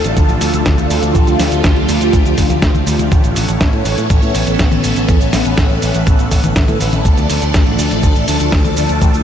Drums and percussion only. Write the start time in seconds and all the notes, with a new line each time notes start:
0.04 closed hi-hat, cabasa
0.17 kick, closed hi-hat, cabasa
0.29 closed hi-hat, cabasa
0.41 open hi-hat, cabasa
0.54 closed hi-hat, cabasa
0.66 kick, snare, closed hi-hat, cabasa
0.78 closed hi-hat, high tom, cabasa
0.90 open hi-hat, cabasa
1.03 closed hi-hat, cabasa
1.15 kick, closed hi-hat, cabasa
1.27 closed hi-hat, cabasa
1.40 snare, open hi-hat, cabasa
1.52 closed hi-hat, cabasa
1.64 kick, snare, closed hi-hat, cabasa
1.76 closed hi-hat
1.89 open hi-hat, cabasa
2.01 closed hi-hat, cabasa
2.13 kick, closed hi-hat, cabasa
2.26 closed hi-hat, cabasa
2.38 kick, open hi-hat, cabasa
2.50 closed hi-hat, high tom, cabasa
2.62 kick, snare, closed hi-hat, cabasa
2.75 closed hi-hat, high tom, cabasa
2.87 open hi-hat, cabasa
2.99 closed hi-hat, high tom, cabasa
3.12 kick, closed hi-hat, cabasa
3.24 closed hi-hat, cabasa
3.36 open hi-hat, cabasa
3.49 closed hi-hat, cabasa
3.61 kick, snare, closed hi-hat, cabasa
3.73 closed hi-hat
3.85 open hi-hat, cabasa
3.98 closed hi-hat, cabasa
4.10 kick, closed hi-hat, cabasa
4.22 closed hi-hat, cabasa
4.35 open hi-hat, cabasa
4.47 closed hi-hat, cabasa
4.59 kick, snare, closed hi-hat, cabasa
4.72 closed hi-hat, high tom, cabasa
4.84 open hi-hat, cabasa
4.96 closed hi-hat, cabasa
5.09 kick, closed hi-hat, cabasa
5.21 closed hi-hat, cabasa
5.33 snare, open hi-hat, cabasa
5.45 closed hi-hat, cabasa
5.58 kick, snare, closed hi-hat, cabasa
5.70 closed hi-hat
5.82 open hi-hat, cabasa
5.94 closed hi-hat, cabasa
6.07 kick, closed hi-hat, cabasa
6.19 closed hi-hat, cabasa
6.31 kick, open hi-hat, cabasa
6.44 closed hi-hat, high tom, cabasa
6.56 kick, snare, closed hi-hat, cabasa
6.68 closed hi-hat, high tom, cabasa
6.81 open hi-hat, cabasa
6.93 closed hi-hat, high tom, cabasa
7.05 kick, closed hi-hat, cabasa
7.17 closed hi-hat, cabasa
7.30 open hi-hat, cabasa
7.42 closed hi-hat, cabasa
7.54 kick, snare, closed hi-hat, cabasa
7.67 closed hi-hat
7.79 open hi-hat, cabasa
7.91 closed hi-hat, cabasa
8.03 kick, closed hi-hat, cabasa
8.16 closed hi-hat, cabasa
8.28 open hi-hat, cabasa
8.40 closed hi-hat, cabasa
8.52 kick, snare, closed hi-hat, cabasa
8.65 closed hi-hat, high tom, cabasa
8.77 open hi-hat, cabasa
8.89 closed hi-hat, cabasa
9.02 kick, closed hi-hat, cabasa
9.14 closed hi-hat, cabasa